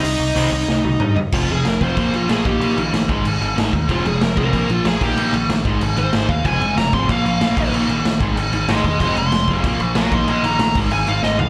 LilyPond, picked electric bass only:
\new Staff \with { instrumentName = "Picked electric bass" } { \clef bass \time 4/4 \key f \minor \tempo 4 = 188 c,8 c,8 c,8 c,8 c,8 c,8 g,4 | f,,8 f,,8 f,,8 f,,8 bes,,8 bes,,8 bes,,8 bes,,8 | bes,,8 bes,,8 bes,,8 aes,,8 aes,,8 aes,,8 aes,,8 ees,8 | f,,8 f,,8 f,,8 c,8 bes,,8 bes,,8 bes,,8 bes,,8 |
bes,,8 bes,,8 bes,,8 aes,,8 aes,,8 aes,,8 aes,,8 ees,8 | f,,8 f,,8 f,,8 aes,,8 bes,,8 bes,,8 bes,,8 bes,,8 | bes,,8 bes,,8 bes,,8 aes,,8 aes,,8 aes,,8 aes,,8 e,,8 | f,,8 f,,8 f,,8 f,,8 bes,,8 bes,,8 bes,,8 bes,,8 |
bes,,8 bes,,8 bes,,8 aes,,8 aes,,8 aes,,8 aes,,8 c,8 | }